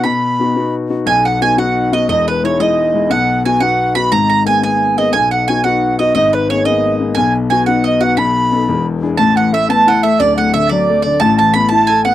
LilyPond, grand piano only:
\new Staff \with { instrumentName = "Grand piano" } { \time 6/8 \key b \major \tempo 4. = 118 b,4 <b dis' fis'>8 <b dis' fis'>4 <b dis' fis'>8 | <b,, b,>4 <b dis' fis'>8 <b dis' fis'>4 <b dis' fis'>8 | <e,, e,>4 <gis dis' e'>8 <gis dis' e'>4 <gis dis' e'>8 | <b,, b,>4 <b dis' fis'>8 <b dis' fis'>4 <b dis' fis'>8 |
<gis,, gis,>4 <ais b gis'>8 <ais b gis'>4 <ais b gis'>8 | <b,, b,>4 <b dis' fis'>8 <b dis' fis'>4 <b dis' fis'>8 | <gis,, gis,>4 <ais b gis'>8 <ais b gis'>4 <ais b gis'>8 | <b,, b,>4 <b dis' fis'>8 <b dis' fis'>4 <b dis' fis'>8 |
<b,, b,>4 <b dis' a'>8 <e,, e,>4 <d' e' gis'>8 | \key d \lydian <a,, a,>8 e8 a8 b8 e'8 a8 | <d,, d,>8 a,8 d8 fis8 a8 d8 | <a,, a,>8 e8 b8 e'8 a'8 b8 | }